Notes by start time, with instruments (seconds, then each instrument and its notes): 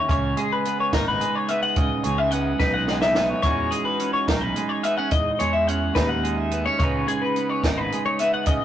Already playing: clean electric guitar C#4 D#4 F#4
0.09 fingered electric bass C#2, clean electric guitar C#3 C#5, kick, closed hi-hat
0.37 clean electric guitar G#3 G#4, closed hi-hat
0.53 clean electric guitar B4
0.65 clean electric guitar B3, closed hi-hat
0.80 clean electric guitar C#5
0.93 fingered electric bass G#1, clean electric guitar D#4 A#4, kick, snare, closed hi-hat
1.08 clean electric guitar B4
1.21 clean electric guitar G#3, closed hi-hat
1.36 clean electric guitar C#5
1.48 clean electric guitar B3 E5, closed hi-hat
1.63 clean electric guitar F#5
1.76 fingered electric bass C#2, clean electric guitar C#3 D#5, kick, closed hi-hat
2.03 fingered electric bass C#2, clean electric guitar G#3 C#5, closed hi-hat
2.18 clean electric guitar E5
2.31 clean electric guitar B3 F#5, closed hi-hat
2.60 fingered electric bass B1, clean electric guitar D#4 B4, kick, snare
2.74 clean electric guitar F#5
2.88 clean electric guitar G#3, snare
3.01 clean electric guitar E5, snare
3.15 clean electric guitar B3, snare
3.30 clean electric guitar C#5
3.42 fingered electric bass E2, clean electric guitar E3 G#3 C#4 D#4 C#5, kick, closed hi-hat
3.47 clean electric guitar F#4
3.71 clean electric guitar G#3 G#4, closed hi-hat
3.85 clean electric guitar B4
4.00 clean electric guitar C#4, closed hi-hat
4.13 clean electric guitar C#5
4.28 fingered electric bass B1, clean electric guitar D#4 A#4, kick, snare, closed hi-hat
4.41 clean electric guitar B4
4.56 clean electric guitar G#3, closed hi-hat
4.69 clean electric guitar C#5
4.83 clean electric guitar B3 E5, closed hi-hat
4.98 clean electric guitar C#4 F#5
5.11 fingered electric bass E2, clean electric guitar D#5, kick, closed hi-hat
5.39 fingered electric bass E2, clean electric guitar G#3 C#5, closed hi-hat
5.53 clean electric guitar E5
5.67 clean electric guitar C#4 F#5, closed hi-hat
5.95 fingered electric bass D#2, clean electric guitar D#4 B4, kick, snare, closed hi-hat
6.09 clean electric guitar F#5
6.24 clean electric guitar G#3, closed hi-hat
6.37 clean electric guitar E5
6.51 clean electric guitar B3, closed hi-hat
6.66 clean electric guitar C#4 C#5
6.79 fingered electric bass C#2, clean electric guitar C#3 G#3 B3 C#5, kick, closed hi-hat
6.83 clean electric guitar D#4 B4
7.07 clean electric guitar G#3 G#4, closed hi-hat
7.22 clean electric guitar B4
7.36 clean electric guitar B3, closed hi-hat
7.50 clean electric guitar C#5
7.63 fingered electric bass G#1, clean electric guitar D#4 A#4, kick, snare, closed hi-hat
7.78 clean electric guitar B4
7.92 clean electric guitar G#3, closed hi-hat
8.06 clean electric guitar C#5
8.19 clean electric guitar B3 E5, closed hi-hat
8.34 clean electric guitar F#5
8.46 fingered electric bass C#2, clean electric guitar C#3 D#5, kick, closed hi-hat